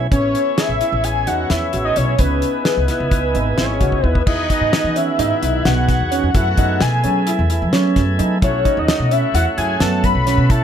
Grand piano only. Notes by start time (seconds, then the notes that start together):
0.11 C#4
0.58 G#4
0.81 E4
1.27 D#4
1.50 E4
1.73 F#4
1.96 E4
2.19 C#4
2.65 G#4
2.89 E4
3.35 D#4
3.57 E4
3.80 F#4
4.03 E4
4.26 E4
4.49 D#4
4.96 C#4
5.19 D#4
5.42 D#4
5.66 B3
6.11 C#4
6.35 E4
6.58 D#4
7.04 C#4
7.27 E4
7.50 E4
7.73 C#4
8.19 D#4
8.42 E4
8.65 D#4
9.11 C#4
9.34 E4
9.57 E4
9.81 B3
10.27 C#4
10.49 E4